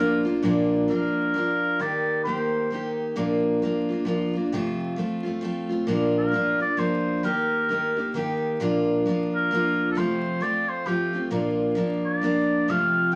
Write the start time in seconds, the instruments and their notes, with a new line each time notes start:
Already playing: steel-string acoustic guitar F3, oboe A#4
0.00 steel-string acoustic guitar A#3 D4 F4
0.25 steel-string acoustic guitar A#3 D4 F4
0.43 steel-string acoustic guitar A#2 F3 A#3 D4 F4
0.88 steel-string acoustic guitar F3 A#3 D4 F4, oboe A#4
1.34 steel-string acoustic guitar F3 A#3 D4 F4
1.79 steel-string acoustic guitar D#3 A#3 D#4 G4, oboe D5
2.24 steel-string acoustic guitar D#3 A#3 D#4, oboe C5
2.29 steel-string acoustic guitar G4
2.70 steel-string acoustic guitar D#3 A#3 D#4 G4
3.16 steel-string acoustic guitar A#2 F3 A#3 D4 F4
3.62 steel-string acoustic guitar F3 A#3 D4 F4
3.89 steel-string acoustic guitar A#3 D4 F4
4.05 steel-string acoustic guitar F3 A#3 D4 F4
4.33 steel-string acoustic guitar A#3 D4 F4
4.52 steel-string acoustic guitar F2 C3 F3 A3 C4 F4
4.96 steel-string acoustic guitar F3 A3 C4 F4
5.23 steel-string acoustic guitar A3 C4 F4
5.27 steel-string acoustic guitar F3
5.41 steel-string acoustic guitar F3 A3 C4 F4
5.69 steel-string acoustic guitar F3 A3 C4 F4
5.87 steel-string acoustic guitar A#2 F3 A#3 D4 F4
6.18 oboe A#4
6.32 steel-string acoustic guitar F3 A#3 D4 F4
6.60 steel-string acoustic guitar A#3 D4 F4, oboe D5
6.77 steel-string acoustic guitar F3 A#3 D4 F4, oboe C5
7.23 steel-string acoustic guitar D#3 A#3 D#4 G4, oboe A#4
7.69 steel-string acoustic guitar D#3 A#3 D#4 G4
7.97 steel-string acoustic guitar A#3 D#4 G4
8.14 steel-string acoustic guitar D#3 A#3 D#4 G4
8.60 steel-string acoustic guitar A#2 F3 A#3 D4 F4
9.06 steel-string acoustic guitar F3 A#3 D4 F4
9.35 oboe A#4
9.51 steel-string acoustic guitar F3 A#3 D4 F4
9.91 steel-string acoustic guitar F2, oboe A4
9.96 steel-string acoustic guitar C3 F3 A3 C4 F4, oboe C5
10.40 steel-string acoustic guitar F3 A3 C4 F4, oboe D5
10.69 oboe C5
10.86 steel-string acoustic guitar F3 A3 C4 F4, oboe G4
11.13 steel-string acoustic guitar F3 A3 C4 F4
11.31 steel-string acoustic guitar A#2 F3 A#3 D4 F4
11.75 steel-string acoustic guitar F3 A#3 D4 F4
12.05 oboe D5
12.22 steel-string acoustic guitar F3 A#3 D4 F4
12.68 steel-string acoustic guitar F2 C3 F3 A3 C4 F4, oboe F5
13.12 steel-string acoustic guitar F3